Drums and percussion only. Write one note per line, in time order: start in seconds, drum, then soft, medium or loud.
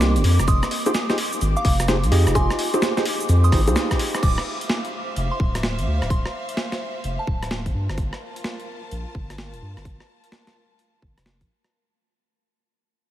0.01 snare loud
0.01 shaker medium
0.16 closed hi-hat medium
0.16 shaker soft
0.24 open hi-hat loud
0.39 cross-stick medium
0.39 closed hi-hat soft
0.39 shaker medium
0.48 kick loud
0.48 closed hi-hat medium
0.48 shaker medium
0.63 cross-stick medium
0.63 shaker soft
0.71 open hi-hat loud
0.86 closed hi-hat medium
0.86 high bongo medium
0.86 shaker medium
0.94 snare loud
0.94 shaker medium
1.10 snare medium
1.10 closed hi-hat soft
1.10 shaker soft
1.18 open hi-hat loud
1.33 shaker medium
1.41 closed hi-hat medium
1.41 shaker medium
1.57 shaker soft
1.65 kick loud
1.65 open hi-hat loud
1.80 cross-stick medium
1.80 closed hi-hat medium
1.80 shaker medium
1.88 snare loud
1.88 shaker medium
2.04 closed hi-hat medium
2.04 shaker soft
2.12 open hi-hat loud
2.27 cross-stick medium
2.27 shaker medium
2.35 kick loud
2.35 closed hi-hat medium
2.35 high bongo medium
2.35 shaker medium
2.50 cross-stick medium
2.50 shaker soft
2.59 open hi-hat loud
2.74 closed hi-hat medium
2.74 high bongo medium
2.74 shaker medium
2.82 snare loud
2.82 shaker medium
2.97 snare medium
2.97 closed hi-hat soft
2.97 shaker soft
3.06 open hi-hat loud
3.21 shaker medium
3.29 closed hi-hat medium
3.29 shaker medium
3.44 shaker soft
3.52 kick loud
3.52 cross-stick medium
3.52 open hi-hat loud
3.68 closed hi-hat medium
3.68 high bongo medium
3.68 shaker medium
3.76 cross-stick medium
3.76 snare loud
3.76 shaker medium
3.91 kick medium
3.91 cross-stick medium
3.91 closed hi-hat medium
3.91 shaker soft
3.99 open hi-hat loud
4.14 cross-stick medium
4.14 closed hi-hat soft
4.14 shaker medium
4.23 kick loud
4.23 closed hi-hat medium
4.23 crash loud
4.38 cross-stick medium
4.61 closed hi-hat medium
4.70 snare loud
4.85 closed hi-hat soft
5.16 closed hi-hat medium
5.40 kick loud
5.55 cross-stick medium
5.55 closed hi-hat medium
5.63 snare loud
5.79 closed hi-hat soft
6.02 cross-stick medium
6.02 closed hi-hat soft
6.10 kick loud
6.10 closed hi-hat medium
6.25 cross-stick medium
6.49 closed hi-hat medium
6.57 snare loud
6.72 snare medium
6.72 closed hi-hat soft
7.04 closed hi-hat medium
7.27 kick loud
7.43 cross-stick medium
7.43 closed hi-hat medium
7.51 snare loud
7.66 kick medium
7.66 closed hi-hat soft
7.89 cross-stick medium
7.89 closed hi-hat soft
7.98 kick loud
7.98 closed hi-hat medium
8.13 cross-stick medium
8.36 closed hi-hat medium
8.44 snare loud
8.60 closed hi-hat soft
8.91 closed hi-hat medium
9.15 kick loud
9.30 cross-stick medium
9.30 closed hi-hat medium
9.38 snare loud
9.53 closed hi-hat soft
9.77 cross-stick medium
9.77 closed hi-hat soft
9.85 kick loud
9.85 closed hi-hat medium
10.00 cross-stick medium
10.24 closed hi-hat medium
10.32 snare loud
10.47 snare medium
10.47 closed hi-hat soft
10.79 closed hi-hat medium
11.02 kick loud
11.18 cross-stick medium
11.18 closed hi-hat medium
11.26 snare loud
11.41 kick medium
11.41 closed hi-hat soft
11.64 cross-stick medium
11.64 closed hi-hat soft